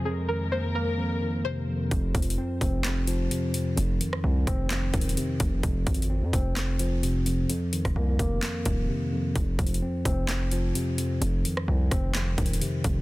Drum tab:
HH |------------------------------------------------|x-----x-x-x-------x-----x-----x-----x-----x-----|x-----x-----------x-----x-----x-x-x-x-----x-----|x-----x-x-x-------x-----x-----x-----x-----x-----|
CP |------------------------------------------------|------------------------x-----------------------|------------------------x-----------------------|------------------------x-----------------------|
SD |------------------------------------------------|------------------------o-----------------------|---------r--------r-----o-----------------------|------------------------o-----------------------|
BD |------------------------------------------------|o-----o-----------o-----------------------------|------------------o-----------o-----------o-----|o-----o-----------o-----------------------------|

HH |x-----x--x--------x-----x-----x-----------------|x-----x-x-x-------x-----x-----x-----x-----x-----|x-----x-----------x-----x-----x-x-x-x-----x-----|
CP |------------------------x-----------------------|------------------------x-----------------------|------------------------x-----------------------|
SD |---------r--------------o-----------------------|------------------------o-----------------------|---------r--------r-----o-----------------------|
BD |---------o--------o-----------o-----------------|o-----o-----------o-----------------------------|------------------o-----------o-----------o-----|